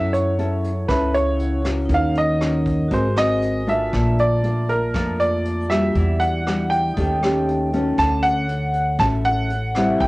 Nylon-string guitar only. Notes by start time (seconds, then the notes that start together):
Already playing: F#3 C#4 E4 A4
0.39 C#4 E4 A4
0.89 C#3 C#4 E4 A4
1.65 C#4 F#4 A#4
1.91 D#3
2.41 C#4 F#4 A#4
2.91 G#3 C4 F#4 A#4
3.17 C4 F#4 A#4
3.67 A3 D4 F4
3.94 A#2
4.44 A3 D4 F4
4.94 F3 A3 D4 F4
5.70 G3 D4 F#4
5.96 E3
6.47 G3 D4 F#4
6.97 D#3 A3 C#4 G4
7.23 A3 C#4 G4
7.73 A3 C#4 F#4
7.98 D3
8.99 A2 A3 C#4 F#4
9.76 G3 C4 E4
10.01 A2